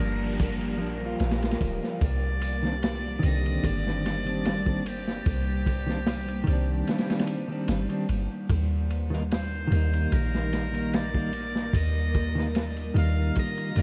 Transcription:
Already playing: clean electric guitar F3 G3, ambient pad G3 A#3 G4 A#4, muted trumpet A#4, noise sweep
0.00 808-style bass G1, clean electric guitar A#3 D4
0.39 kick, ride
0.61 ride
0.77 808-style bass A#1, clean electric guitar F3 G3 A#3
0.82 clean electric guitar D4
0.97 clean electric guitar F3 G3
1.03 clean electric guitar A#3 F4
1.20 808-style bass A#1, snare, ride
1.31 snare, ride
1.43 snare, ride
1.51 snare, ride
1.61 808-style bass D1, kick, ride
1.84 snare
2.01 808-style bass C2, ambient pad C5, muted trumpet D5, kick, ride
2.41 ride
2.63 clean electric guitar D#3 G3 C4, snare
2.67 clean electric guitar D4
2.83 snare, ride
3.19 clean electric guitar D#3 G3, ride
3.23 808-style bass C2, clean electric guitar C4, muted trumpet D#5
3.28 clean electric guitar D3
3.46 ride
3.64 808-style bass G1, muted trumpet D5, kick, ride
3.87 snare
4.06 snare, ride
4.25 clean electric guitar D#3 G3 C4, ride
4.29 clean electric guitar D4
4.45 snare, ride
4.65 clean electric guitar D#3 G3 C4, kick
4.69 clean electric guitar D4
4.86 muted trumpet G4, ride
5.08 snare
5.26 808-style bass C2, kick, ride
5.66 kick, ride
5.87 clean electric guitar D#3 G3 C4, snare
5.91 clean electric guitar D4
6.07 snare, ride
6.28 ride
6.44 808-style bass C2, clean electric guitar D#3 G3, ride
6.50 clean electric guitar C4 D4
6.87 snare, ride
6.98 snare, ride
7.10 snare, ride
7.19 snare, ride
7.27 ride
7.48 clean electric guitar D#3 G3 C4
7.53 clean electric guitar D4
7.68 808-style bass G1, snare, ride
7.89 clean electric guitar D#3 G3 C4, ride
7.93 clean electric guitar D4
8.09 808-style bass G1, ride
8.50 808-style bass D#2, ambient pad A#3 A#4, kick, ride
8.90 ride
9.10 clean electric guitar D#3 G3 A#3, snare
9.14 clean electric guitar D#4
9.31 muted trumpet C5, snare, ride
9.68 808-style bass D#2, clean electric guitar D#3 G3
9.72 clean electric guitar A#3, ride
9.76 clean electric guitar D#4
9.93 ride
10.12 808-style bass A#1, muted trumpet A#4, kick, ride
10.35 snare
10.53 snare, ride
10.72 clean electric guitar D#3 G3 A#3 D#4, ride
10.94 muted trumpet D5, snare, ride
11.13 clean electric guitar D#3 G3 A#3, kick
11.17 clean electric guitar D#4
11.33 ride
11.55 snare
11.73 808-style bass D#2, ambient pad F4, muted trumpet D#5, kick, ride
12.15 kick, ride
12.35 clean electric guitar D#3 G3 A#3, snare
12.39 clean electric guitar D#4
12.55 snare, ride
12.77 ride
12.94 808-style bass D#2, clean electric guitar D#3 G3 A#3, muted trumpet F5, ride
12.98 clean electric guitar D#4
13.35 muted trumpet D#5, kick, ride
13.57 ride
13.75 808-style bass D#2, clean electric guitar D#3 G3 A#3, ride

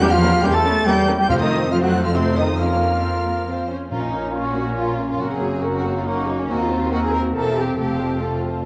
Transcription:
0.00 double bass section E2, cello section G3, viola section A#3 C#4, violin section E4 A#4 G6, french horn section G4, cor anglais G4, flute section G5
0.11 cello section F3, french horn section F4, cor anglais F4, flute section F5, violin section F6
0.22 viola section A#3 C#4, violin section E4 A#4
0.43 double bass section E2, cello section G3, viola section A#3 C#4, violin section E4 A#4 G6, cor anglais G4, french horn section G4, flute section G5
0.54 cello section A3, french horn section A4, cor anglais A4, flute section A5, violin section A6
0.65 viola section A#3 C#4, violin section E4 A#4
0.86 double bass section E2, cello section G3, viola section A#3 C#4, violin section E4 A#4 G6, cor anglais G4, french horn section G4, flute section G5
1.08 viola section A#3 C#4, violin section E4 A#4
1.18 cello section G3, cor anglais G4, french horn section G4, flute section G5, violin section G6
1.28 timpani F2, double bass section F2, cello section F3, viola section A3 C4, cor anglais F4, french horn section F4, violin section F4 C5 F6, flute section F5
1.39 cello section D#3, cor anglais D#4, french horn section D#4, flute section D#5, violin section D#6
1.71 cello section F3, viola section A3 C4, french horn section F4, cor anglais F4, violin section F4 C5 F6, flute section F5
1.82 cello section F#3, french horn section F#4, cor anglais F#4, flute section F#5, violin section F#6
2.03 cello section F3, cor anglais F4, french horn section F4, flute section F5, violin section F6
2.14 cello section C3, viola section A3 C4, cor anglais C4, french horn section C4, violin section F4 C5 C6, flute section C5
2.36 cello section D#3, cor anglais D#4, french horn section D#4, flute section D#5, violin section D#6
2.58 cello section F3, viola section A#3 C#4, cor anglais F4, french horn section F4, violin section F4 A#4 F6, flute section F5
3.04 viola section C4
3.26 viola section A#3
3.47 viola section C4, violin section F4 C5
3.69 viola section C#4
3.90 double bass section A#1, cello section A#2, timpani A#2, french horn section A#3 C#4, viola section C#4 F4, clarinet C#4, violin section F4 A#4, flute section A#5
4.02 violin section D#4
4.13 viola section A#3 C#4, violin section C#5
4.34 viola section C#4 F4, violin section F4 A#4, flute section C#6
4.45 violin section F#4
4.56 viola section A#3 C#4, violin section C#5
4.77 viola section C#4 F4, violin section F4 A#4, flute section C6
4.99 viola section A#3 C#4, violin section C#5
5.11 violin section F4
5.20 double bass section F#1, cello section F#2, clarinet C4, viola section C#4 A#4, violin section F#4 F#5, flute section A#5
5.32 violin section G#4
5.42 viola section A#3 F#4, violin section C#5
5.64 viola section C#4 A#4, violin section F#4 F#5, flute section A#5
5.84 viola section A#3 F#4, violin section C#5
5.97 violin section F4
6.06 clarinet A#3, viola section C#4 A#4, violin section D#4 F#5, flute section C#6
6.28 viola section A#3 F#4, violin section C#5
6.40 violin section C#4
6.48 cello section D#2, double bass section D#2, french horn section A#3 C4, viola section A#3 A#4, clarinet C4, violin section F#4 D#5, flute section A#5
6.61 violin section F4
6.70 viola section C4 F#4, violin section C5
6.91 viola section A#3 A#4, clarinet C4, violin section F#4 D#5, flute section A#5
7.04 violin section G#4
7.13 viola section C4 F#4, violin section A#4 C5
7.34 double bass section E1, cello section E2, viola section A#3 A#4, clarinet C4, violin section A4 E5, flute section A#5
7.57 viola section C4 G4, violin section G4 C5
7.77 double bass section F1, cello section F2, timpani F2, french horn section A3, viola section A3 A4, clarinet C4, violin section G4 F5, flute section A5
8.00 viola section C4 F4, violin section C5
8.21 viola section A3 A4, clarinet C4, violin section F4 F5, flute section A5
8.43 viola section C4 F4, violin section C5

